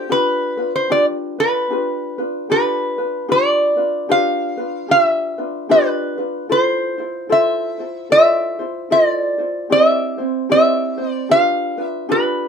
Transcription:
Already playing: resonator guitar played with a steel bar G4
0.09 ukulele D4 F4 G4 B4, resonator guitar played with a steel bar B4
0.57 ukulele D4 F4 B4
0.76 resonator guitar played with a steel bar C5
0.90 ukulele D4 F4 G4 B4, resonator guitar played with a steel bar D5
1.39 ukulele D4 F4 B4, resonator guitar played with a steel bar B4
1.70 ukulele D4 F4 G4 B4
2.18 ukulele D4 F4 B4
2.50 ukulele D4 F4 G4 B4, resonator guitar played with a steel bar B4
2.98 ukulele D4 F4 B4
3.28 ukulele D4 F4 G4 B4, resonator guitar played with a steel bar D5
3.77 ukulele D4 F4 B4
4.09 ukulele D4 F4 G4 B4, resonator guitar played with a steel bar F5
4.57 ukulele D4 F4 B4
4.88 ukulele D4 F4 G4 B4, resonator guitar played with a steel bar F5
5.02 resonator guitar played with a steel bar E5
5.38 ukulele D4 F4 B4
5.69 ukulele D4 F4 G4 B4, resonator guitar played with a steel bar B4
6.18 ukulele D4 F4 B4
6.49 ukulele E4 F4 A4 C5, resonator guitar played with a steel bar C5
6.98 ukulele E4 F4 C5
7.29 ukulele E4 F4 A4 C5, resonator guitar played with a steel bar E5
7.79 ukulele E4 F4 C5
8.10 ukulele E4 F4 A4 C5, resonator guitar played with a steel bar E5
8.59 ukulele E4 F4 C5
8.90 ukulele E4 F4 A4 C5, resonator guitar played with a steel bar D5
9.38 ukulele E4 F4 C5
9.70 ukulele C4 E4 G4 C5, resonator guitar played with a steel bar E5
10.18 ukulele C4 E4 C5
10.49 ukulele C4 E4 G4 C5, resonator guitar played with a steel bar E5
10.98 ukulele C4 E4 C5
11.11 resonator guitar played with a steel bar D5
11.29 ukulele D4 F4 G4 B4, resonator guitar played with a steel bar F5
11.78 ukulele D4 F4 B4
11.83 resonator guitar played with a steel bar E5
12.09 ukulele D4 F4 G4 B4, resonator guitar played with a steel bar B4

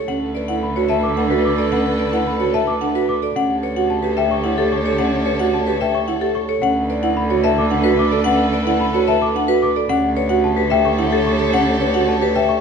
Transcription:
Already playing: marimba A4, vibraphone C#5
0.08 cello D2, marimba C#4, clarinet A4, string section A4 B4, celesta F#5, vibraphone F#5
0.35 marimba B4, vibraphone D5
0.48 marimba E4, vibraphone F#5
0.63 celesta B5
0.76 marimba F#4, vibraphone C#5
0.89 marimba B4, vibraphone E5, celesta A5
1.03 celesta D6
1.17 marimba D4, vibraphone F#5
1.30 marimba F#4, vibraphone B4
1.45 celesta D6
1.58 marimba A4, vibraphone D5
1.72 marimba C#4, vibraphone F#5, celesta F#5
1.99 marimba B4, vibraphone D5
2.13 marimba E4, vibraphone F#5
2.27 celesta B5
2.40 marimba F#4, vibraphone C#5
2.54 marimba B4, vibraphone E5, celesta A5
2.67 celesta D6
2.81 marimba D4, vibraphone F#5
2.95 marimba F#4, vibraphone B4
3.09 celesta D6
3.22 marimba A4, vibraphone D5
3.35 cello D2, marimba C#4, clarinet G4, string section A4 C#5, celesta F#5, vibraphone F#5
3.63 marimba B4, vibraphone C#5
3.76 marimba F#4, vibraphone F#5
3.90 celesta A5
4.03 marimba G4, vibraphone B4
4.17 marimba B4, vibraphone E5, celesta G5
4.31 celesta C#6
4.44 marimba E4, vibraphone F#5
4.58 marimba G4, vibraphone A4
4.72 celesta C#6
4.86 marimba A4, vibraphone C#5
4.98 marimba C#4, vibraphone F#5, celesta F#5
5.26 marimba B4, vibraphone C#5
5.39 marimba F#4, vibraphone F#5
5.54 celesta A5
5.67 marimba G4, vibraphone B4
5.81 marimba B4, vibraphone E5, celesta G5
5.95 celesta C#6
6.08 marimba E4, vibraphone F#5
6.21 marimba G4, vibraphone A4
6.35 celesta C#6
6.49 marimba A4, vibraphone C#5
6.62 cello D2, marimba C#4, string section A4 B4, clarinet A4, celesta F#5, vibraphone F#5
6.90 marimba B4, vibraphone D5
7.03 marimba E4, vibraphone F#5
7.17 celesta B5
7.30 marimba F#4, vibraphone C#5
7.44 marimba B4, vibraphone E5, celesta A5
7.58 celesta D6
7.71 marimba D4, vibraphone F#5
7.84 marimba F#4, vibraphone B4
7.99 celesta D6
8.11 marimba A4, vibraphone D5
8.24 marimba C#4, vibraphone F#5, celesta F#5
8.53 marimba B4, vibraphone D5
8.67 marimba E4, vibraphone F#5
8.80 celesta B5
8.94 marimba F#4, vibraphone C#5
9.08 marimba B4, vibraphone E5, celesta A5
9.22 celesta D6
9.35 marimba D4, vibraphone F#5
9.48 marimba F#4, vibraphone B4
9.62 celesta D6
9.76 marimba A4, vibraphone D5
9.89 cello D2, marimba C#4, clarinet G4, string section A4 C#5, celesta F#5, vibraphone F#5
10.17 marimba B4, vibraphone C#5
10.29 marimba F#4, vibraphone F#5
10.44 celesta A5
10.57 marimba G4, vibraphone B4
10.70 marimba B4, vibraphone E5, celesta G5
10.85 celesta C#6
10.98 marimba E4, vibraphone F#5
11.12 marimba G4, vibraphone A4
11.26 celesta C#6
11.39 marimba A4, vibraphone C#5
11.53 marimba C#4, celesta F#5, vibraphone F#5
11.80 marimba B4, vibraphone C#5
11.94 marimba F#4, vibraphone F#5
12.08 celesta A5
12.21 marimba G4, vibraphone B4
12.35 marimba B4, vibraphone E5, celesta G5
12.49 celesta C#6

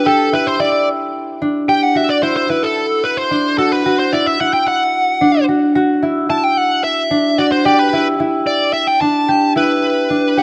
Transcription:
Already playing: harp D4 E4
0.06 harp G4, lead electric guitar A4
0.33 harp E4, lead electric guitar B4
0.47 lead electric guitar C5
0.60 harp E4, lead electric guitar D5
1.42 harp D4
1.68 harp G4, lead electric guitar G5
1.83 lead electric guitar F#5
1.95 harp F#4, lead electric guitar E5
2.10 lead electric guitar D5
2.23 harp E4, lead electric guitar C5
2.37 lead electric guitar C5
2.49 harp E4, lead electric guitar B4
2.63 lead electric guitar A4
3.04 lead electric guitar B4
3.17 lead electric guitar C5
3.31 harp D4
3.58 harp F#4, lead electric guitar A4
3.72 lead electric guitar B4
3.86 harp F#4
3.99 lead electric guitar C5
4.13 harp E4, lead electric guitar D5
4.27 lead electric guitar E5
4.40 harp E4, lead electric guitar F#5
4.54 lead electric guitar G5
4.68 lead electric guitar F#5
5.21 harp D4
5.49 harp F#4
5.75 harp F#4
6.03 harp E4
6.29 harp E4, lead electric guitar A5
6.44 lead electric guitar G5
6.57 lead electric guitar F#5
6.84 lead electric guitar E5
7.11 harp D4
7.38 harp F#4, lead electric guitar D5
7.52 lead electric guitar C5
7.65 harp G4, lead electric guitar D5
7.79 lead electric guitar B4
7.93 harp E4
8.20 harp E4
8.47 lead electric guitar D5
8.73 lead electric guitar E5
8.87 lead electric guitar G5
9.01 harp D4, lead electric guitar A5
9.28 harp G4
9.56 harp E4, lead electric guitar B4
10.10 harp D4
10.37 harp G4, lead electric guitar F#5

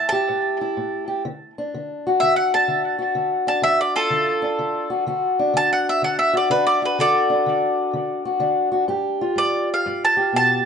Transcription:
Already playing: steel-string acoustic guitar A2 E4
0.09 steel-string acoustic guitar G4, mandolin A5
0.29 steel-string acoustic guitar A2
0.61 steel-string acoustic guitar E4
0.77 steel-string acoustic guitar A2
1.08 steel-string acoustic guitar G4
1.25 steel-string acoustic guitar D3
1.58 steel-string acoustic guitar D4
1.74 steel-string acoustic guitar D3
2.07 steel-string acoustic guitar F#4
2.20 steel-string acoustic guitar D3, mandolin E5
2.36 mandolin F#5
2.54 steel-string acoustic guitar D4, mandolin A5
2.68 steel-string acoustic guitar D3
2.99 steel-string acoustic guitar F#4
3.15 steel-string acoustic guitar D3
3.47 steel-string acoustic guitar D4, mandolin A5
3.62 steel-string acoustic guitar D3, mandolin E5
3.81 mandolin D5
3.96 mandolin F4 A4
4.10 steel-string acoustic guitar D3
4.42 steel-string acoustic guitar D4
4.59 steel-string acoustic guitar D3
4.90 steel-string acoustic guitar F#4
5.07 steel-string acoustic guitar D3 F#4
5.39 steel-string acoustic guitar D4
5.54 steel-string acoustic guitar D3, mandolin A5
5.73 mandolin F#5
5.89 mandolin E5
6.02 steel-string acoustic guitar D3, mandolin F#5
6.19 mandolin E5
6.33 steel-string acoustic guitar F#4, mandolin D5
6.50 steel-string acoustic guitar D3 D4, mandolin B4
6.67 mandolin D5
6.82 steel-string acoustic guitar F#4, mandolin B4
6.99 steel-string acoustic guitar D3 F#4, mandolin A4 D5
7.30 steel-string acoustic guitar D4
7.46 steel-string acoustic guitar D3
7.93 steel-string acoustic guitar D3
8.25 steel-string acoustic guitar F#4
8.40 steel-string acoustic guitar D3 D4
8.72 steel-string acoustic guitar F#4
8.88 steel-string acoustic guitar G2 G4
9.21 steel-string acoustic guitar F4
9.36 steel-string acoustic guitar G2, mandolin D5
9.74 mandolin F5
9.86 steel-string acoustic guitar G2
10.05 mandolin A5
10.17 steel-string acoustic guitar G4
10.33 steel-string acoustic guitar B2, mandolin A5

